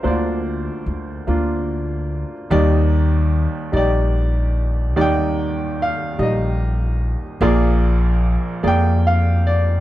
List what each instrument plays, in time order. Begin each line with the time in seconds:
Already playing: upright piano A#3 D4 G4 A#4 C5 D5 D#5 F5
0.03 upright piano D2 D3 A#3 D4 C5, upright bass D2
0.07 upright piano F4 D5
0.86 upright bass D2
1.27 upright bass D2, upright piano A#3 D4 F4
2.50 upright piano D#2 D#3 G3 D#4 D5, upright bass D#2
3.72 upright bass A#1, upright piano G3 D#4 D5
3.77 upright piano G4 D5
4.96 upright piano D#2 D#3 G3 D#4 D5, upright bass D#2
5.01 upright piano D5 G5
5.82 upright piano F5
6.18 upright bass A#1, upright piano G3 D#4 D#5
6.23 upright piano D#5
7.41 upright bass A#1, upright piano A#1 A#2 A#3 G#4 D5
8.63 upright bass F2, upright piano A#3 G#4 D5
8.68 upright piano G5
9.07 upright piano F5
9.47 upright piano D5